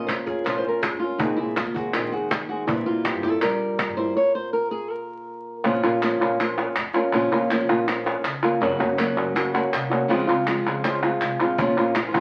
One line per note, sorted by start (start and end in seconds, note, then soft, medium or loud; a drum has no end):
0.00 0.12 A#1 medium
0.00 1.19 A#2 medium
0.00 0.45 C#4 soft
0.00 0.98 F4 medium
0.07 0.26 C5 medium
0.07 muted nylon-string guitar stroke medium
0.07 cajon slap medium
0.07 clap medium
0.18 0.40 F2 medium
0.26 0.45 A#3 soft
0.26 0.46 C#4 soft
0.26 0.45 F4 soft
0.26 0.44 G#4 medium
0.26 cajon bass medium
0.26 cajon slap soft
0.44 0.61 A#1 medium
0.44 0.64 F3 medium
0.44 0.64 A#3 medium
0.44 0.64 C#4 medium
0.44 0.63 F4 medium
0.44 0.57 A#4 medium
0.44 cajon slap soft
0.44 clap medium
0.58 0.68 C5 loud
0.63 0.86 F2 medium
0.63 0.83 A#3 soft
0.63 0.83 C#4 soft
0.63 0.82 F4 soft
0.63 cajon slap soft
0.68 0.82 A#4 medium
0.82 1.01 G#4 medium
0.82 muted nylon-string guitar stroke medium
0.82 cajon slap loud
0.82 clap medium
0.92 1.14 F2 medium
1.02 1.21 A#3 soft
1.02 1.20 C#4 soft
1.02 1.20 F4 soft
1.18 1.35 A#1 medium
1.18 1.95 A#2 medium
1.18 1.39 D#3 medium
1.18 1.39 G#3 medium
1.18 1.38 D#4 medium
1.18 cajon bass loud
1.23 1.39 C4 medium
1.23 1.38 G#4 medium
1.36 1.61 A#1 medium
1.36 1.56 E4 loud
1.36 1.57 G#4 soft
1.41 1.58 G#3 soft
1.41 1.58 C4 soft
1.56 1.75 F4 medium
1.56 muted nylon-string guitar stroke medium
1.56 cajon slap loud
1.56 clap medium
1.66 1.88 D#2 medium
1.74 1.95 C4 soft
1.74 1.94 F#4 loud
1.74 1.94 G#4 soft
1.74 cajon bass medium
1.78 1.94 G#3 soft
1.93 2.09 A#1 medium
1.93 2.12 D#3 medium
1.93 2.13 G#3 medium
1.93 2.13 C4 medium
1.93 2.12 F4 medium
1.93 2.12 G#4 medium
1.93 clap medium
2.12 2.35 D#2 medium
2.12 2.30 G#3 soft
2.12 2.31 C4 soft
2.12 2.30 F#4 medium
2.12 2.31 G#4 soft
2.12 cajon slap soft
2.30 2.49 G#4 loud
2.30 muted nylon-string guitar stroke medium
2.30 cajon slap loud
2.30 clap medium
2.41 2.63 D#2 medium
2.49 2.68 G#3 soft
2.49 2.68 C4 soft
2.49 2.67 F#4 loud
2.49 2.68 G#4 medium
2.68 2.83 A#1 medium
2.68 5.65 A#2 medium
2.68 2.86 E3 medium
2.68 2.86 G3 medium
2.68 2.87 C4 medium
2.68 2.85 E4 medium
2.68 cajon bass loud
2.86 3.09 A#1 medium
2.86 3.05 G3 soft
2.86 3.05 C4 soft
2.86 3.05 E4 soft
2.86 3.05 F4 loud
3.05 3.23 E3 soft
3.05 3.24 G3 soft
3.05 3.24 C4 medium
3.05 3.23 E4 medium
3.05 3.24 G4 medium
3.05 cajon slap medium
3.05 clap medium
3.15 3.37 G2 medium
3.23 3.42 G3 soft
3.23 3.43 C4 soft
3.23 3.42 E4 soft
3.23 3.42 A4 loud
3.23 cajon bass medium
3.23 cajon slap soft
3.42 3.57 A#1 medium
3.42 4.15 G3 medium
3.42 3.97 A#4 medium
3.42 muted nylon-string guitar stroke medium
3.42 clap medium
3.61 3.83 G2 medium
3.79 cajon slap loud
3.79 clap medium
3.88 4.11 G2 medium
3.97 4.17 G3 soft
3.97 4.17 C4 soft
3.97 4.16 E4 medium
3.97 4.16 C5 loud
4.17 4.35 C#5 loud
4.35 4.53 C5 medium
4.53 4.71 A#4 medium
4.71 4.90 G#4 medium
4.90 5.56 A#4 medium
5.64 5.80 A#1 loud
5.64 5.83 F3 medium
5.64 5.83 A#3 medium
5.64 5.83 C#4 medium
5.64 5.82 F4 medium
5.83 6.14 A#1 medium
5.83 6.02 A#3 soft
5.83 6.02 C#4 soft
5.83 6.01 F4 soft
6.02 6.20 F3 medium
6.02 6.20 A#3 medium
6.02 6.20 C#4 medium
6.02 6.19 F4 medium
6.02 muted nylon-string guitar stroke medium
6.02 clap medium
6.21 6.65 A#1 medium
6.21 6.39 A#3 soft
6.21 6.39 C#4 soft
6.21 6.39 F4 soft
6.21 clap medium
6.39 6.57 F3 medium
6.39 6.58 A#3 medium
6.39 6.58 C#4 medium
6.39 6.56 F4 medium
6.39 muted nylon-string guitar stroke medium
6.39 clap medium
6.57 6.77 A#3 soft
6.57 6.76 C#4 soft
6.57 6.75 F4 medium
6.57 clap medium
6.76 7.06 F2 medium
6.76 muted nylon-string guitar stroke medium
6.76 clap loud
6.95 7.13 A#3 soft
6.95 7.13 C#4 soft
6.95 7.13 F4 medium
6.95 clap soft
7.13 7.28 A#1 loud
7.13 7.31 F3 medium
7.13 7.32 A#3 medium
7.13 7.32 C#4 medium
7.13 7.31 F4 medium
7.31 7.61 A#1 medium
7.31 7.50 A#3 soft
7.31 7.50 C#4 soft
7.31 7.50 F4 soft
7.50 7.69 F3 medium
7.50 7.69 A#3 medium
7.50 7.69 C#4 medium
7.50 7.68 F4 medium
7.50 muted nylon-string guitar stroke medium
7.50 clap medium
7.69 8.13 A#1 medium
7.69 7.87 A#3 soft
7.69 7.88 C#4 soft
7.69 7.87 F4 soft
7.87 8.05 F3 medium
7.87 8.06 A#3 medium
7.87 8.06 C#4 medium
7.87 8.04 F4 medium
7.87 muted nylon-string guitar stroke medium
7.87 clap medium
8.05 8.23 A#3 soft
8.05 8.23 C#4 soft
8.05 8.23 F4 medium
8.05 clap medium
8.24 8.54 C#2 medium
8.24 muted nylon-string guitar stroke medium
8.24 clap medium
8.42 8.60 A#3 soft
8.42 8.61 C#4 soft
8.42 8.61 F4 medium
8.42 clap medium
8.60 8.76 F#1 loud
8.60 8.79 C#3 medium
8.60 8.79 F#3 medium
8.60 8.79 A#3 medium
8.60 8.79 C#4 medium
8.60 8.78 F#4 medium
8.79 9.10 F#1 medium
8.79 8.97 A#3 soft
8.79 8.97 C#4 soft
8.79 8.97 F#4 soft
8.97 9.34 F#3 medium
8.97 9.35 A#3 medium
8.97 9.35 C#4 medium
8.97 9.35 F#4 medium
8.97 muted nylon-string guitar stroke medium
8.97 clap medium
9.16 9.61 F#1 medium
9.16 9.35 A#3 soft
9.16 9.35 C#4 soft
9.16 9.35 F#4 soft
9.16 clap medium
9.35 9.53 C#3 medium
9.35 9.53 F#3 medium
9.35 9.54 A#3 medium
9.35 9.53 C#4 medium
9.35 9.52 F#4 medium
9.35 muted nylon-string guitar stroke medium
9.35 clap medium
9.53 9.71 A#3 soft
9.53 9.71 C#4 soft
9.53 9.72 F#4 medium
9.53 clap medium
9.72 10.03 C2 loud
9.72 muted nylon-string guitar stroke medium
9.72 clap loud
9.91 10.10 A#3 soft
9.91 10.09 C#4 soft
9.91 10.09 F#4 soft
9.91 clap medium
10.09 10.24 C#2 loud
10.09 10.27 C#3 medium
10.09 10.28 F3 medium
10.09 10.28 G#3 medium
10.09 10.28 C4 medium
10.09 10.26 F4 medium
10.28 10.58 C#2 medium
10.28 10.46 G#3 soft
10.28 10.46 C4 soft
10.28 10.46 F4 medium
10.46 10.83 F3 medium
10.46 10.83 G#3 medium
10.46 10.83 C4 medium
10.46 10.83 F4 medium
10.46 muted nylon-string guitar stroke medium
10.46 clap medium
10.66 11.10 C#2 medium
10.66 10.84 G#3 soft
10.66 10.84 C4 soft
10.66 10.84 F4 medium
10.66 clap medium
10.84 11.02 C#3 medium
10.84 11.02 F3 medium
10.84 11.03 G#3 medium
10.84 11.03 C4 medium
10.84 11.02 F4 medium
10.84 muted nylon-string guitar stroke medium
10.84 clap medium
11.03 11.21 G#3 soft
11.03 11.21 C4 soft
11.03 11.21 F4 soft
11.03 clap medium
11.21 11.38 C2 medium
11.21 muted nylon-string guitar stroke medium
11.21 clap medium
11.40 11.57 A#1 medium
11.40 11.59 G#3 soft
11.40 11.59 C4 soft
11.40 11.58 F4 soft
11.40 clap soft
11.58 11.73 A#1 loud
11.58 11.95 F3 medium
11.58 11.95 A#3 medium
11.58 11.96 C#4 medium
11.58 11.95 F4 medium
11.58 cajon bass loud
11.77 12.07 A#1 medium
11.77 11.94 A#3 soft
11.77 11.94 C#4 medium
11.77 11.95 F4 medium
11.95 12.01 A#3 soft
11.95 12.01 C#4 soft
11.95 12.02 F4 medium
11.95 muted nylon-string guitar stroke medium
11.95 cajon slap loud
11.95 clap medium
12.02 12.05 F3 soft
12.02 12.06 A#3 medium
12.02 12.06 C#4 medium
12.02 12.06 F4 soft
12.06 12.09 F3 medium
12.06 12.10 A#3 medium
12.06 12.11 C#4 medium
12.06 12.11 F4 medium
12.11 12.14 F3 medium
12.11 12.15 A#3 medium
12.11 12.15 C#4 medium
12.11 12.15 F4 medium
12.11 cajon bass medium
12.15 12.20 A#1 medium
12.15 12.20 F3 medium
12.15 12.20 A#3 medium
12.15 12.20 C#4 medium
12.15 12.20 F4 medium